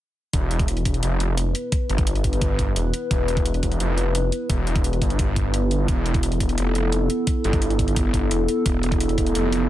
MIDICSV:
0, 0, Header, 1, 4, 480
1, 0, Start_track
1, 0, Tempo, 346821
1, 464, Time_signature, 4, 2, 24, 8
1, 13415, End_track
2, 0, Start_track
2, 0, Title_t, "Analog synth pad"
2, 0, Program_c, 0, 89
2, 461, Note_on_c, 0, 59, 83
2, 462, Note_on_c, 0, 71, 89
2, 463, Note_on_c, 0, 64, 73
2, 8111, Note_off_c, 0, 71, 0
2, 8143, Note_on_c, 0, 69, 86
2, 13415, Note_off_c, 0, 59, 0
2, 13415, Note_off_c, 0, 64, 0
2, 13415, Note_off_c, 0, 69, 0
2, 13415, End_track
3, 0, Start_track
3, 0, Title_t, "Detuned saw bass"
3, 0, Program_c, 1, 39
3, 463, Note_on_c, 1, 28, 94
3, 1164, Note_off_c, 1, 28, 0
3, 1183, Note_on_c, 1, 28, 91
3, 1404, Note_off_c, 1, 28, 0
3, 1424, Note_on_c, 1, 29, 94
3, 2124, Note_off_c, 1, 29, 0
3, 2623, Note_on_c, 1, 31, 91
3, 3804, Note_off_c, 1, 31, 0
3, 3822, Note_on_c, 1, 28, 92
3, 4043, Note_off_c, 1, 28, 0
3, 4303, Note_on_c, 1, 28, 93
3, 5004, Note_off_c, 1, 28, 0
3, 5023, Note_on_c, 1, 28, 95
3, 5244, Note_off_c, 1, 28, 0
3, 5263, Note_on_c, 1, 29, 101
3, 5964, Note_off_c, 1, 29, 0
3, 6222, Note_on_c, 1, 28, 93
3, 6923, Note_off_c, 1, 28, 0
3, 6942, Note_on_c, 1, 31, 96
3, 8124, Note_off_c, 1, 31, 0
3, 8144, Note_on_c, 1, 28, 91
3, 8844, Note_off_c, 1, 28, 0
3, 8863, Note_on_c, 1, 28, 90
3, 9084, Note_off_c, 1, 28, 0
3, 9103, Note_on_c, 1, 29, 101
3, 9804, Note_off_c, 1, 29, 0
3, 10303, Note_on_c, 1, 31, 97
3, 11484, Note_off_c, 1, 31, 0
3, 11503, Note_on_c, 1, 28, 97
3, 11724, Note_off_c, 1, 28, 0
3, 11983, Note_on_c, 1, 28, 95
3, 12684, Note_off_c, 1, 28, 0
3, 12703, Note_on_c, 1, 28, 95
3, 12924, Note_off_c, 1, 28, 0
3, 12943, Note_on_c, 1, 29, 98
3, 13415, Note_off_c, 1, 29, 0
3, 13415, End_track
4, 0, Start_track
4, 0, Title_t, "Drums"
4, 462, Note_on_c, 9, 42, 97
4, 463, Note_on_c, 9, 36, 112
4, 601, Note_off_c, 9, 36, 0
4, 601, Note_off_c, 9, 42, 0
4, 703, Note_on_c, 9, 42, 61
4, 823, Note_off_c, 9, 42, 0
4, 823, Note_on_c, 9, 36, 100
4, 823, Note_on_c, 9, 42, 37
4, 943, Note_off_c, 9, 42, 0
4, 943, Note_on_c, 9, 42, 94
4, 961, Note_off_c, 9, 36, 0
4, 1062, Note_off_c, 9, 42, 0
4, 1062, Note_on_c, 9, 42, 36
4, 1182, Note_off_c, 9, 42, 0
4, 1182, Note_on_c, 9, 42, 70
4, 1183, Note_on_c, 9, 36, 58
4, 1303, Note_off_c, 9, 42, 0
4, 1303, Note_on_c, 9, 42, 36
4, 1321, Note_off_c, 9, 36, 0
4, 1422, Note_off_c, 9, 42, 0
4, 1422, Note_on_c, 9, 42, 91
4, 1560, Note_off_c, 9, 42, 0
4, 1663, Note_on_c, 9, 42, 67
4, 1802, Note_off_c, 9, 42, 0
4, 1903, Note_on_c, 9, 42, 97
4, 2041, Note_off_c, 9, 42, 0
4, 2143, Note_on_c, 9, 42, 66
4, 2282, Note_off_c, 9, 42, 0
4, 2383, Note_on_c, 9, 36, 120
4, 2383, Note_on_c, 9, 42, 90
4, 2521, Note_off_c, 9, 42, 0
4, 2522, Note_off_c, 9, 36, 0
4, 2623, Note_on_c, 9, 42, 59
4, 2743, Note_off_c, 9, 42, 0
4, 2743, Note_on_c, 9, 36, 104
4, 2743, Note_on_c, 9, 42, 35
4, 2862, Note_off_c, 9, 42, 0
4, 2862, Note_on_c, 9, 42, 92
4, 2882, Note_off_c, 9, 36, 0
4, 2982, Note_off_c, 9, 42, 0
4, 2982, Note_on_c, 9, 42, 34
4, 3102, Note_off_c, 9, 42, 0
4, 3102, Note_on_c, 9, 42, 68
4, 3103, Note_on_c, 9, 36, 63
4, 3223, Note_off_c, 9, 42, 0
4, 3223, Note_on_c, 9, 42, 37
4, 3241, Note_off_c, 9, 36, 0
4, 3342, Note_off_c, 9, 42, 0
4, 3342, Note_on_c, 9, 42, 88
4, 3343, Note_on_c, 9, 36, 110
4, 3480, Note_off_c, 9, 42, 0
4, 3481, Note_off_c, 9, 36, 0
4, 3583, Note_on_c, 9, 36, 62
4, 3583, Note_on_c, 9, 42, 67
4, 3721, Note_off_c, 9, 36, 0
4, 3721, Note_off_c, 9, 42, 0
4, 3822, Note_on_c, 9, 42, 91
4, 3960, Note_off_c, 9, 42, 0
4, 4063, Note_on_c, 9, 42, 66
4, 4201, Note_off_c, 9, 42, 0
4, 4302, Note_on_c, 9, 36, 119
4, 4303, Note_on_c, 9, 42, 84
4, 4441, Note_off_c, 9, 36, 0
4, 4441, Note_off_c, 9, 42, 0
4, 4543, Note_on_c, 9, 42, 57
4, 4662, Note_on_c, 9, 36, 110
4, 4663, Note_off_c, 9, 42, 0
4, 4663, Note_on_c, 9, 42, 36
4, 4782, Note_off_c, 9, 42, 0
4, 4782, Note_on_c, 9, 42, 89
4, 4801, Note_off_c, 9, 36, 0
4, 4902, Note_off_c, 9, 42, 0
4, 4902, Note_on_c, 9, 42, 33
4, 5022, Note_off_c, 9, 42, 0
4, 5022, Note_on_c, 9, 36, 64
4, 5022, Note_on_c, 9, 42, 67
4, 5142, Note_off_c, 9, 42, 0
4, 5142, Note_on_c, 9, 42, 34
4, 5160, Note_off_c, 9, 36, 0
4, 5262, Note_off_c, 9, 42, 0
4, 5262, Note_on_c, 9, 42, 90
4, 5400, Note_off_c, 9, 42, 0
4, 5502, Note_on_c, 9, 42, 60
4, 5640, Note_off_c, 9, 42, 0
4, 5742, Note_on_c, 9, 42, 86
4, 5880, Note_off_c, 9, 42, 0
4, 5982, Note_on_c, 9, 42, 63
4, 6121, Note_off_c, 9, 42, 0
4, 6222, Note_on_c, 9, 36, 118
4, 6222, Note_on_c, 9, 42, 85
4, 6360, Note_off_c, 9, 36, 0
4, 6360, Note_off_c, 9, 42, 0
4, 6462, Note_on_c, 9, 42, 56
4, 6582, Note_on_c, 9, 36, 109
4, 6583, Note_off_c, 9, 42, 0
4, 6583, Note_on_c, 9, 42, 33
4, 6702, Note_off_c, 9, 42, 0
4, 6702, Note_on_c, 9, 42, 84
4, 6720, Note_off_c, 9, 36, 0
4, 6823, Note_off_c, 9, 42, 0
4, 6823, Note_on_c, 9, 42, 32
4, 6942, Note_on_c, 9, 36, 63
4, 6943, Note_off_c, 9, 42, 0
4, 6943, Note_on_c, 9, 42, 64
4, 7063, Note_off_c, 9, 42, 0
4, 7063, Note_on_c, 9, 42, 34
4, 7081, Note_off_c, 9, 36, 0
4, 7183, Note_off_c, 9, 42, 0
4, 7183, Note_on_c, 9, 36, 108
4, 7183, Note_on_c, 9, 42, 88
4, 7321, Note_off_c, 9, 36, 0
4, 7322, Note_off_c, 9, 42, 0
4, 7423, Note_on_c, 9, 36, 60
4, 7423, Note_on_c, 9, 42, 61
4, 7561, Note_off_c, 9, 36, 0
4, 7562, Note_off_c, 9, 42, 0
4, 7663, Note_on_c, 9, 42, 82
4, 7802, Note_off_c, 9, 42, 0
4, 7903, Note_on_c, 9, 42, 59
4, 8041, Note_off_c, 9, 42, 0
4, 8143, Note_on_c, 9, 36, 113
4, 8143, Note_on_c, 9, 42, 89
4, 8281, Note_off_c, 9, 42, 0
4, 8282, Note_off_c, 9, 36, 0
4, 8383, Note_on_c, 9, 42, 57
4, 8503, Note_off_c, 9, 42, 0
4, 8503, Note_on_c, 9, 36, 102
4, 8503, Note_on_c, 9, 42, 33
4, 8623, Note_off_c, 9, 42, 0
4, 8623, Note_on_c, 9, 42, 86
4, 8641, Note_off_c, 9, 36, 0
4, 8743, Note_off_c, 9, 42, 0
4, 8743, Note_on_c, 9, 42, 35
4, 8863, Note_on_c, 9, 36, 60
4, 8864, Note_off_c, 9, 42, 0
4, 8864, Note_on_c, 9, 42, 66
4, 8984, Note_off_c, 9, 42, 0
4, 8984, Note_on_c, 9, 42, 35
4, 9002, Note_off_c, 9, 36, 0
4, 9103, Note_off_c, 9, 42, 0
4, 9103, Note_on_c, 9, 42, 88
4, 9242, Note_off_c, 9, 42, 0
4, 9344, Note_on_c, 9, 42, 61
4, 9482, Note_off_c, 9, 42, 0
4, 9583, Note_on_c, 9, 42, 84
4, 9721, Note_off_c, 9, 42, 0
4, 9822, Note_on_c, 9, 42, 63
4, 9961, Note_off_c, 9, 42, 0
4, 10063, Note_on_c, 9, 36, 115
4, 10063, Note_on_c, 9, 42, 91
4, 10201, Note_off_c, 9, 36, 0
4, 10201, Note_off_c, 9, 42, 0
4, 10302, Note_on_c, 9, 42, 60
4, 10423, Note_off_c, 9, 42, 0
4, 10423, Note_on_c, 9, 36, 105
4, 10423, Note_on_c, 9, 42, 34
4, 10542, Note_off_c, 9, 42, 0
4, 10542, Note_on_c, 9, 42, 90
4, 10561, Note_off_c, 9, 36, 0
4, 10662, Note_off_c, 9, 42, 0
4, 10662, Note_on_c, 9, 42, 35
4, 10782, Note_off_c, 9, 42, 0
4, 10782, Note_on_c, 9, 42, 64
4, 10783, Note_on_c, 9, 36, 57
4, 10903, Note_off_c, 9, 42, 0
4, 10903, Note_on_c, 9, 42, 37
4, 10921, Note_off_c, 9, 36, 0
4, 11022, Note_off_c, 9, 42, 0
4, 11022, Note_on_c, 9, 42, 92
4, 11023, Note_on_c, 9, 36, 102
4, 11161, Note_off_c, 9, 36, 0
4, 11161, Note_off_c, 9, 42, 0
4, 11262, Note_on_c, 9, 42, 63
4, 11263, Note_on_c, 9, 36, 56
4, 11401, Note_off_c, 9, 36, 0
4, 11401, Note_off_c, 9, 42, 0
4, 11501, Note_on_c, 9, 42, 90
4, 11640, Note_off_c, 9, 42, 0
4, 11743, Note_on_c, 9, 42, 60
4, 11881, Note_off_c, 9, 42, 0
4, 11981, Note_on_c, 9, 42, 98
4, 11983, Note_on_c, 9, 36, 111
4, 12120, Note_off_c, 9, 42, 0
4, 12121, Note_off_c, 9, 36, 0
4, 12222, Note_on_c, 9, 42, 61
4, 12342, Note_off_c, 9, 42, 0
4, 12342, Note_on_c, 9, 42, 35
4, 12343, Note_on_c, 9, 36, 95
4, 12463, Note_off_c, 9, 42, 0
4, 12463, Note_on_c, 9, 42, 93
4, 12481, Note_off_c, 9, 36, 0
4, 12583, Note_off_c, 9, 42, 0
4, 12583, Note_on_c, 9, 42, 36
4, 12703, Note_off_c, 9, 42, 0
4, 12703, Note_on_c, 9, 36, 59
4, 12703, Note_on_c, 9, 42, 67
4, 12823, Note_off_c, 9, 42, 0
4, 12823, Note_on_c, 9, 42, 36
4, 12841, Note_off_c, 9, 36, 0
4, 12942, Note_off_c, 9, 42, 0
4, 12942, Note_on_c, 9, 42, 93
4, 13081, Note_off_c, 9, 42, 0
4, 13182, Note_on_c, 9, 42, 68
4, 13321, Note_off_c, 9, 42, 0
4, 13415, End_track
0, 0, End_of_file